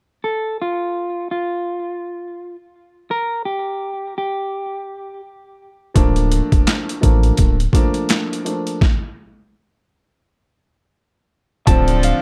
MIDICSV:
0, 0, Header, 1, 6, 480
1, 0, Start_track
1, 0, Tempo, 714286
1, 163, Time_signature, 4, 2, 24, 8
1, 8211, End_track
2, 0, Start_track
2, 0, Title_t, "Clean electric guitar"
2, 0, Program_c, 0, 27
2, 161, Note_on_c, 0, 69, 89
2, 378, Note_off_c, 0, 69, 0
2, 414, Note_on_c, 0, 65, 76
2, 862, Note_off_c, 0, 65, 0
2, 882, Note_on_c, 0, 65, 76
2, 1717, Note_off_c, 0, 65, 0
2, 2089, Note_on_c, 0, 70, 108
2, 2302, Note_off_c, 0, 70, 0
2, 2321, Note_on_c, 0, 67, 78
2, 2775, Note_off_c, 0, 67, 0
2, 2808, Note_on_c, 0, 67, 83
2, 3499, Note_off_c, 0, 67, 0
2, 7841, Note_on_c, 0, 81, 97
2, 8058, Note_off_c, 0, 81, 0
2, 8093, Note_on_c, 0, 77, 78
2, 8211, Note_off_c, 0, 77, 0
2, 8211, End_track
3, 0, Start_track
3, 0, Title_t, "Horn section"
3, 0, Program_c, 1, 61
3, 7841, Note_on_c, 1, 53, 117
3, 7842, Note_on_c, 1, 62, 111
3, 7842, Note_on_c, 1, 69, 121
3, 8211, Note_off_c, 1, 53, 0
3, 8211, Note_off_c, 1, 62, 0
3, 8211, Note_off_c, 1, 69, 0
3, 8211, End_track
4, 0, Start_track
4, 0, Title_t, "Grand piano"
4, 0, Program_c, 2, 0
4, 3994, Note_on_c, 2, 53, 91
4, 4000, Note_on_c, 2, 57, 87
4, 4003, Note_on_c, 2, 58, 88
4, 4008, Note_on_c, 2, 62, 107
4, 4671, Note_off_c, 2, 53, 0
4, 4674, Note_off_c, 2, 57, 0
4, 4676, Note_off_c, 2, 58, 0
4, 4678, Note_off_c, 2, 62, 0
4, 4710, Note_on_c, 2, 53, 86
4, 4714, Note_on_c, 2, 57, 84
4, 4718, Note_on_c, 2, 58, 90
4, 4722, Note_on_c, 2, 62, 89
4, 5064, Note_off_c, 2, 53, 0
4, 5066, Note_off_c, 2, 57, 0
4, 5068, Note_off_c, 2, 58, 0
4, 5070, Note_off_c, 2, 62, 0
4, 5192, Note_on_c, 2, 53, 89
4, 5196, Note_on_c, 2, 57, 85
4, 5200, Note_on_c, 2, 58, 89
4, 5205, Note_on_c, 2, 62, 106
4, 5646, Note_off_c, 2, 53, 0
4, 5648, Note_off_c, 2, 57, 0
4, 5650, Note_off_c, 2, 58, 0
4, 5652, Note_off_c, 2, 62, 0
4, 5676, Note_on_c, 2, 53, 77
4, 5680, Note_on_c, 2, 57, 70
4, 5684, Note_on_c, 2, 58, 62
4, 5689, Note_on_c, 2, 62, 85
4, 5904, Note_off_c, 2, 53, 0
4, 5906, Note_off_c, 2, 57, 0
4, 5908, Note_off_c, 2, 58, 0
4, 5910, Note_off_c, 2, 62, 0
4, 7839, Note_on_c, 2, 50, 95
4, 7845, Note_on_c, 2, 53, 97
4, 7849, Note_on_c, 2, 57, 86
4, 7853, Note_on_c, 2, 60, 114
4, 8211, Note_off_c, 2, 50, 0
4, 8211, Note_off_c, 2, 53, 0
4, 8211, Note_off_c, 2, 57, 0
4, 8211, Note_off_c, 2, 60, 0
4, 8211, End_track
5, 0, Start_track
5, 0, Title_t, "Sub bass"
5, 0, Program_c, 3, 38
5, 4005, Note_on_c, 3, 26, 100
5, 4308, Note_off_c, 3, 26, 0
5, 4385, Note_on_c, 3, 29, 89
5, 4464, Note_off_c, 3, 29, 0
5, 4728, Note_on_c, 3, 33, 98
5, 4917, Note_off_c, 3, 33, 0
5, 4966, Note_on_c, 3, 26, 98
5, 5157, Note_off_c, 3, 26, 0
5, 7847, Note_on_c, 3, 26, 106
5, 8149, Note_off_c, 3, 26, 0
5, 8211, End_track
6, 0, Start_track
6, 0, Title_t, "Drums"
6, 4002, Note_on_c, 9, 36, 103
6, 4003, Note_on_c, 9, 42, 86
6, 4070, Note_off_c, 9, 36, 0
6, 4070, Note_off_c, 9, 42, 0
6, 4140, Note_on_c, 9, 42, 52
6, 4207, Note_off_c, 9, 42, 0
6, 4244, Note_on_c, 9, 42, 81
6, 4311, Note_off_c, 9, 42, 0
6, 4382, Note_on_c, 9, 36, 94
6, 4383, Note_on_c, 9, 42, 45
6, 4450, Note_off_c, 9, 36, 0
6, 4450, Note_off_c, 9, 42, 0
6, 4486, Note_on_c, 9, 38, 116
6, 4486, Note_on_c, 9, 42, 90
6, 4487, Note_on_c, 9, 39, 97
6, 4553, Note_off_c, 9, 38, 0
6, 4554, Note_off_c, 9, 42, 0
6, 4555, Note_off_c, 9, 39, 0
6, 4632, Note_on_c, 9, 42, 58
6, 4699, Note_off_c, 9, 42, 0
6, 4725, Note_on_c, 9, 36, 93
6, 4725, Note_on_c, 9, 42, 87
6, 4792, Note_off_c, 9, 42, 0
6, 4793, Note_off_c, 9, 36, 0
6, 4861, Note_on_c, 9, 42, 45
6, 4928, Note_off_c, 9, 42, 0
6, 4955, Note_on_c, 9, 42, 95
6, 4963, Note_on_c, 9, 36, 86
6, 5023, Note_off_c, 9, 42, 0
6, 5030, Note_off_c, 9, 36, 0
6, 5107, Note_on_c, 9, 42, 55
6, 5175, Note_off_c, 9, 42, 0
6, 5194, Note_on_c, 9, 36, 95
6, 5206, Note_on_c, 9, 42, 75
6, 5262, Note_off_c, 9, 36, 0
6, 5273, Note_off_c, 9, 42, 0
6, 5336, Note_on_c, 9, 42, 48
6, 5403, Note_off_c, 9, 42, 0
6, 5436, Note_on_c, 9, 42, 84
6, 5446, Note_on_c, 9, 38, 112
6, 5447, Note_on_c, 9, 39, 93
6, 5503, Note_off_c, 9, 42, 0
6, 5513, Note_off_c, 9, 38, 0
6, 5514, Note_off_c, 9, 39, 0
6, 5598, Note_on_c, 9, 42, 56
6, 5665, Note_off_c, 9, 42, 0
6, 5686, Note_on_c, 9, 42, 71
6, 5753, Note_off_c, 9, 42, 0
6, 5824, Note_on_c, 9, 42, 54
6, 5892, Note_off_c, 9, 42, 0
6, 5923, Note_on_c, 9, 36, 106
6, 5926, Note_on_c, 9, 38, 87
6, 5990, Note_off_c, 9, 36, 0
6, 5993, Note_off_c, 9, 38, 0
6, 7843, Note_on_c, 9, 36, 108
6, 7843, Note_on_c, 9, 42, 87
6, 7910, Note_off_c, 9, 36, 0
6, 7911, Note_off_c, 9, 42, 0
6, 7981, Note_on_c, 9, 42, 55
6, 8049, Note_off_c, 9, 42, 0
6, 8086, Note_on_c, 9, 42, 84
6, 8153, Note_off_c, 9, 42, 0
6, 8211, End_track
0, 0, End_of_file